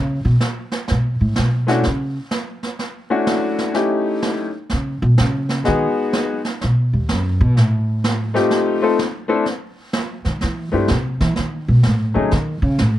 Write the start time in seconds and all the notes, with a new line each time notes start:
Already playing: C#3
0.25 B2
0.41 snare
0.72 snare
0.88 B2, brush sweep, snare
1.21 A2
1.36 B2, snare
1.67 A3 C#4 D4 E4 F#4, snare
1.83 C#3, brush sweep, snare
2.31 snare
2.63 snare
2.79 brush sweep, snare
3.10 A3 C#4 D4 E4 F#4
3.27 snare
3.59 snare
3.74 A3 C#4 D#4 E4 G4, brush sweep, snare
4.22 snare
4.70 C#3, brush sweep, snare
5.02 B2
5.18 C#3, snare
5.49 snare
5.64 D#3 G#3 B3 D#4 F#4 G#4, brush sweep, snare
6.13 snare
6.45 snare
6.61 B2, brush sweep, snare
6.93 D#2
7.09 F#2, snare
7.41 B2
7.57 A2, brush sweep, snare
8.04 snare
8.34 A3 C4 D#4 F4 G4, snare
8.51 brush sweep, snare
8.82 A3 C4 D#4 F4 A4
8.99 snare
9.28 A3 C4 D4 E4 A4
9.46 brush sweep, snare
9.93 snare
10.25 D#3, snare
10.41 E3, brush sweep, snare
10.72 G2 A3 C4 D4 E4 G4
10.88 C3, snare
11.20 E3, snare
11.36 D#3, brush sweep, snare
11.68 B2
11.83 A2, snare
12.14 C#3 F#3 A3 C#4 D#4 G#4
12.31 D#3, brush sweep, snare
12.62 C#3
12.79 A2, snare